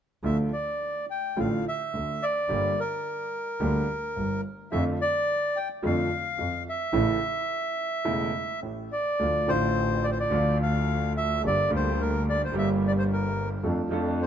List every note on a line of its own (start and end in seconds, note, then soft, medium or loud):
0.23 0.48 D2 medium
0.23 0.48 D3 soft
0.23 0.48 F3 soft
0.23 0.48 A3 soft
0.23 0.48 F4 soft
0.23 0.38 E5 medium
0.53 1.06 D5 medium
1.10 1.39 G5 medium
1.36 1.61 A1 soft
1.36 1.61 A1 medium
1.36 1.61 A2 medium
1.36 1.61 D3 soft
1.36 1.61 F3 soft
1.36 1.61 A3 soft
1.36 1.61 F4 medium
1.36 1.65 F5 medium
1.68 2.25 E5 medium
1.93 2.17 D2 soft
1.93 2.18 D2 soft
1.93 2.17 D3 soft
2.22 2.80 D5 medium
2.49 2.73 G1 medium
2.49 2.73 G2 medium
2.49 2.73 D3 soft
2.49 2.73 G3 soft
2.49 2.73 A#3 soft
2.49 2.73 G4 medium
2.80 4.41 A#4 medium
3.60 3.84 D2 medium
3.60 3.84 D3 medium
3.60 3.84 G3 soft
3.60 3.84 A#3 soft
3.60 3.84 G4 medium
4.16 4.40 G1 soft
4.16 4.41 G1 soft
4.16 4.40 G2 soft
4.71 4.96 F2 medium
4.71 4.95 D3 medium
4.71 4.96 F3 medium
4.71 4.96 A3 soft
4.71 4.96 F4 medium
4.71 4.84 E5 medium
5.01 5.58 D5 medium
5.56 5.69 G5 medium
5.83 6.06 F2 medium
5.83 6.07 F2 medium
5.83 6.06 D3 medium
5.83 6.06 F3 medium
5.83 6.06 A3 soft
5.83 6.06 F4 medium
5.83 6.63 F5 medium
6.38 6.61 F2 soft
6.38 6.62 F2 soft
6.38 6.62 F3 soft
6.69 8.60 E5 medium
6.93 7.16 A1 medium
6.93 7.17 A1 medium
6.93 7.17 A2 medium
6.93 7.16 C#3 medium
6.93 7.16 E3 medium
6.93 7.17 A3 medium
6.93 7.17 E4 medium
8.05 8.29 E1 medium
8.05 8.29 E2 medium
8.05 8.29 C#3 medium
8.05 8.29 E3 medium
8.05 8.29 A3 medium
8.05 8.29 E4 medium
8.63 8.87 A1 soft
8.63 8.87 A2 soft
8.92 9.50 D5 medium
9.19 9.43 D2 soft
9.19 9.44 D2 medium
9.19 9.43 D3 soft
9.19 9.43 F3 soft
9.19 9.43 A3 soft
9.19 9.43 F4 soft
9.46 10.28 A1 medium
9.46 10.29 A1 medium
9.46 10.28 A2 medium
9.46 10.27 D3 medium
9.46 10.28 F3 soft
9.46 10.28 A3 medium
9.46 10.06 C5 medium
9.50 10.29 F4 medium
10.04 10.10 D5 medium
10.12 10.18 C5 medium
10.20 10.58 D5 medium
10.30 11.37 D2 medium
10.30 11.38 D2 medium
10.30 11.37 D3 medium
10.30 11.37 F3 soft
10.30 11.38 A3 soft
10.30 11.38 F4 medium
10.62 11.13 F5 medium
11.17 11.42 E5 medium
11.43 11.67 G1 soft
11.43 11.67 G1 medium
11.43 11.67 G2 soft
11.43 11.67 D3 soft
11.43 11.67 G3 soft
11.43 11.67 A#3 soft
11.43 11.67 G4 soft
11.43 11.71 D5 medium
11.69 12.49 D2 medium
11.69 12.50 D2 medium
11.69 12.49 D3 medium
11.69 12.49 G3 medium
11.69 12.50 A#3 medium
11.69 12.50 G4 medium
11.76 12.02 C5 medium
12.01 12.26 A#4 medium
12.29 12.42 D5 medium
12.45 12.55 C5 medium
12.52 13.58 G1 medium
12.52 13.58 G2 medium
12.52 13.57 D3 medium
12.52 13.58 G3 medium
12.52 13.59 A#3 medium
12.52 13.59 G4 medium
12.58 12.69 E5 medium
12.87 12.92 D5 medium
12.99 13.04 C5 medium
13.13 13.49 A#4 medium
13.63 13.87 F2 medium
13.63 13.87 F2 soft
13.63 13.87 F3 medium
13.63 13.87 A3 soft
13.63 13.87 D4 soft
13.63 13.87 A4 soft
13.89 14.27 F2 medium
13.89 13.91 F3 medium
13.89 14.27 F3 medium
13.89 14.27 A3 medium
13.89 14.27 D4 medium
13.89 14.27 A4 medium
14.22 14.27 C5 medium